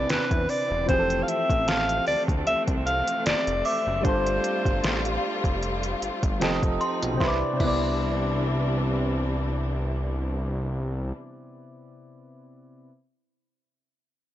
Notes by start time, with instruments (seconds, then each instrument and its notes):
Already playing: synth keys C3 C4 D4 E4 B4, string section E3 C4 D4 B4, alto saxophone D5, synth bell G5
0.09 analog synth bass E2, alto saxophone B4, snare, closed hi-hat
0.31 analog synth bass E2, kick, closed hi-hat
0.49 alto saxophone D5, open hi-hat
0.71 analog synth bass E1
0.86 analog synth bass F1, string section C3 A3, synth keys E3 F3 C4, alto saxophone C5, kick, closed hi-hat
0.91 synth keys G4 G#4
0.99 synth keys A4
1.10 closed hi-hat
1.23 alto saxophone F5
1.28 alto saxophone E5, closed hi-hat
1.50 analog synth bass A1, kick, closed hi-hat
1.68 alto saxophone F5, synth bell A5, snare, closed hi-hat
1.89 closed hi-hat
2.07 analog synth bass D2, alto saxophone D5, open hi-hat
2.28 analog synth bass D2, kick, closed hi-hat
2.47 analog synth bass C2, alto saxophone E5, closed hi-hat
2.68 analog synth bass C2, kick, closed hi-hat
2.86 alto saxophone F5, closed hi-hat
3.08 closed hi-hat
3.26 analog synth bass F1, alto saxophone D5, snare, closed hi-hat
3.47 analog synth bass F1, closed hi-hat
3.65 alto saxophone E5, synth bell D6, open hi-hat
3.87 analog synth bass F#1
4.02 analog synth bass G1, synth keys G3 D4 F4, string section G3 F4, alto saxophone C5, kick, closed hi-hat
4.07 synth keys A4 C5
4.26 closed hi-hat
4.44 closed hi-hat
4.65 analog synth bass G1, kick, closed hi-hat
4.84 analog synth bass A1, snare, closed hi-hat
5.05 closed hi-hat
5.44 analog synth bass F1, kick, closed hi-hat
5.63 closed hi-hat
5.83 closed hi-hat
6.02 analog synth bass G1, closed hi-hat
6.23 analog synth bass G1, kick, closed hi-hat
6.40 analog synth bass F1, synth keys F3 C4 G4 A4 D#5, string section F3 D#4, snare, closed hi-hat
6.63 analog synth bass F1, kick, closed hi-hat
6.81 synth bell C6, closed hi-hat, open hi-hat
7.03 analog synth bass B1, closed hi-hat
7.14 synth keys C3 C4
7.20 analog synth bass C2, string section C3 E3 G3 D4, synth keys E4, synth bell C6, kick, snare
7.24 synth keys B4 D5
7.53 synth keys C3 C4
7.60 analog synth bass C2, synth keys B3 E4, kick, crash
7.67 synth keys D5